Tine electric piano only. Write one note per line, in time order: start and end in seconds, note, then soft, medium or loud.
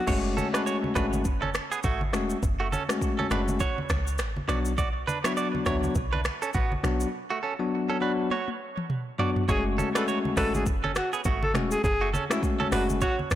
0.07 0.50 G#3 medium
0.07 0.50 A3 medium
0.07 0.50 C#4 medium
0.07 0.50 F#4 loud
0.53 0.92 G#3 medium
0.53 0.93 A3 medium
0.53 0.93 C#4 medium
0.53 0.93 F#4 medium
0.95 1.23 G#3 medium
0.95 1.23 A3 medium
0.95 1.23 C#4 medium
0.95 1.23 F#4 medium
2.13 2.36 G#3 medium
2.13 2.36 A3 medium
2.13 2.36 C#4 medium
2.13 2.37 F#4 medium
2.89 3.28 G#3 medium
2.89 3.28 A3 medium
2.89 3.28 C#4 medium
2.89 3.28 F#4 medium
3.30 3.58 G#3 medium
3.30 3.58 A3 medium
3.30 3.58 C#4 medium
3.30 3.58 F#4 medium
4.48 4.72 F#3 medium
4.48 4.72 B3 medium
4.48 4.72 D4 medium
4.48 4.72 F#4 medium
5.24 5.63 F#3 medium
5.24 5.63 B3 medium
5.24 5.63 D4 medium
5.24 5.63 F#4 medium
5.66 5.93 F#3 medium
5.66 5.94 B3 medium
5.66 5.94 D4 medium
5.66 5.94 F#4 medium
6.83 7.07 F#3 medium
6.83 7.07 B3 medium
6.83 7.07 D4 medium
6.83 7.07 F#4 medium
7.59 7.98 F#3 medium
7.59 7.98 B3 medium
7.59 7.99 D4 medium
7.59 7.99 F#4 medium
8.01 8.29 F#3 medium
8.01 8.29 B3 medium
8.01 8.29 D4 medium
8.01 8.29 F#4 medium
9.19 9.42 F#3 medium
9.19 9.42 B3 medium
9.19 9.43 D4 medium
9.19 9.43 F#4 medium
9.48 9.91 G#3 medium
9.48 9.91 A3 medium
9.48 9.91 C#4 medium
9.48 9.91 F#4 loud
9.95 10.34 G#3 medium
9.95 10.34 A3 medium
9.95 10.34 C#4 medium
9.95 10.34 F#4 medium
10.37 10.64 G#3 medium
10.37 10.64 A3 medium
10.37 10.64 C#4 medium
10.37 10.64 F#4 medium
11.54 11.78 G#3 medium
11.54 11.78 A3 medium
11.54 11.78 C#4 medium
11.54 11.78 F#4 medium
12.30 12.69 G#3 medium
12.30 12.69 A3 medium
12.30 12.69 C#4 medium
12.30 12.69 F#4 medium
12.72 12.99 G#3 medium
12.72 12.99 A3 medium
12.72 12.99 C#4 medium
12.72 13.00 F#4 medium